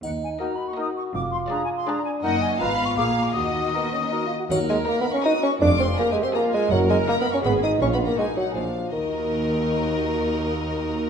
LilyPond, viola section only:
\new Staff \with { instrumentName = "Viola section" } { \time 3/4 \key ees \minor \tempo 4 = 163 r4 bes4 bes4 | r4 aes4 aes4 | bes4 ces'4 bes4 | bes2~ bes8 r8 |
bes'2 ges'4 | f'4 g'4 f'4 | bes'2 aes'4 | f'4 ees'4 d'8 r8 |
<ees' ges'>2.~ | <ees' ges'>2. | }